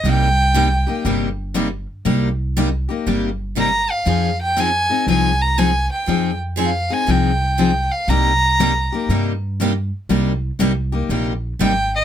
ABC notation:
X:1
M:4/4
L:1/8
Q:"Swing" 1/4=120
K:Cm
V:1 name="Violin"
g4 z4 | z6 b f- | f g a2 a b a g- | g z f a g3 f |
b4 z4 | z6 g e |]
V:2 name="Steel-string acoustic guitar"
[C,G,B,EG] z [C,G,B,EG] [B,EG] [C,G,B,EG] z [C,G,B,EG] z | [C,G,B,EG] z [C,G,B,EG] [B,EG] [C,G,B,EG] z [C,G,B,EG] z | [F,CEA] z [F,CEA] [CEA] [F,CEA] z [F,CEA] z | [F,CEA] z [F,CEA] [CEA] [F,CEA] z [F,CEA] z |
[C,G,B,EG] z [C,G,B,EG] [B,EG] [C,G,B,EG] z [C,G,B,EG] z | [C,G,B,EG] z [C,G,B,EG] [B,EG] [C,G,B,EG] z [C,G,B,EG] z |]
V:3 name="Steel-string acoustic guitar"
[C,G,B,EG] z [C,G,B,EG] z [C,G,B,EG] z [C,G,B,EG] z | [C,G,B,EG] z [C,G,B,EG] z [C,G,B,EG] z [C,G,B,EG] z | [F,CEA] z [F,CEA] z [F,CEA] z [F,CEA] z | [F,CEA] z [F,CEA] z [F,CEA] z [F,CEA] z |
[C,G,B,EG] z [C,G,B,EG] z [C,G,B,EG] z [C,G,B,EG] z | [C,G,B,EG] z [C,G,B,EG] z [C,G,B,EG] z [C,G,B,EG] z |]
V:4 name="Upright bass" clef=bass
C,,4 G,,,4 | C,,4 G,,,4 | F,,4 C,,4 | F,,4 C,,4 |
C,,4 G,,4 | C,,2 C,,2 B,,,2 A,,,2 |]